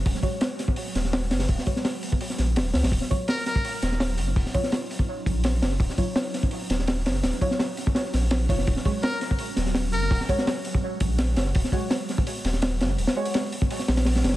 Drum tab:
HH |o---o---o---o---o---o---o---o-o-|o---o---o---o---o---o---o---o-o-|o---o---o---o---o---o---o---o---|o---o---o---o-------o---o---o---|
SD |--o-----o---o-------o-o-o---o-o-|--o---o-o---------o-o---o---o-o-|--o-----o---o-------o-o-o-------|--o---o-o---------------o---o-o-|
BD |o---o---------o-----------------|o---o---------o-----------------|o---o---------o-----------------|o---o---------o-----o-----------|

HH |o---o---o---o---o---o---o---o---|o---o---o---o---o---o---o---o---|o---o---o---o---o---o---o---o---|o---o---o---o-------o---o---o---|
SD |--o-----o---o-------o-o-o---o---|o-o---o-o-------o-o-o---o-----o-|--o-----o---o-------o-o-o-------|--o---o-o---------------o---o-o-|
BD |o---o---------o-----------------|----o---------o-------------o---|o---o---------o-----------------|o---o---------o-----o-----------|

HH |o---o---o---o---o---o---o---o---|o-o---o-o---o---o---o-o-o-o-oo--|
SD |--o-----o---o-------o-o-o---o---|--o-----o---------o-o-o-o-o-ooo-|
BD |o---o---------o-----------------|--------------o-----------------|